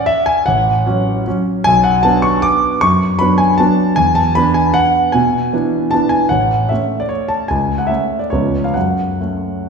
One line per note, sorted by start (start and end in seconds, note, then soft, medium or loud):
0.00 0.43 C#4 medium
0.06 0.27 E5 loud
0.26 0.46 G#5 loud
0.46 0.85 A1 medium
0.46 1.26 F#5 medium
0.86 1.22 F#3 medium
0.86 1.23 C#4 medium
1.27 1.62 F#3 soft
1.27 1.62 C#4 medium
1.64 2.04 B1 medium
1.64 1.84 G#5 loud
1.84 2.04 F#5 medium
2.03 2.78 B3 soft
2.03 2.78 D4 medium
2.03 2.23 A5 loud
2.22 2.43 C#6 medium
2.42 2.81 D6 loud
2.81 3.19 F#2 medium
2.81 3.19 C#6 loud
3.19 3.56 F#3 medium
3.19 3.56 B3 medium
3.19 3.56 D4 medium
3.19 3.38 B5 loud
3.38 3.58 G#5 medium
3.58 3.94 F#3 soft
3.58 3.94 B3 medium
3.58 3.94 D4 medium
3.58 3.97 A5 medium
3.96 4.35 E2 medium
3.96 4.16 G#5 loud
4.15 4.35 A5 medium
4.35 5.10 B3 medium
4.35 5.11 D4 medium
4.35 4.55 B5 loud
4.54 4.75 G#5 medium
4.74 5.13 F#5 loud
5.12 5.52 B2 medium
5.12 5.92 G#5 medium
5.53 5.89 E3 soft
5.53 5.89 B3 soft
5.53 5.89 D4 soft
5.91 6.28 E3 soft
5.91 6.28 B3 soft
5.91 6.28 D4 soft
5.91 6.11 A5 medium
6.09 6.30 G#5 medium
6.29 6.69 A1 medium
6.29 6.69 F#5 medium
6.69 7.46 A3 soft
6.69 7.46 C#4 soft
6.69 7.00 E5 medium
7.00 7.10 D5 medium
7.09 7.30 C#5 medium
7.28 7.49 A5 medium
7.48 7.89 C#2 soft
7.48 7.79 G#5 medium
7.78 7.89 F#5 medium
7.87 8.28 A3 soft
7.87 8.28 C#4 soft
7.87 8.20 E5 medium
8.19 8.31 D5 medium
8.30 8.74 C#2 soft
8.30 8.72 F3 soft
8.30 8.72 B3 soft
8.30 8.72 C#4 soft
8.30 8.64 C#5 medium
8.64 8.75 F5 medium
8.74 9.19 F#2 soft
8.74 9.69 F#5 medium
9.21 9.69 A3 soft
9.21 9.69 C#4 soft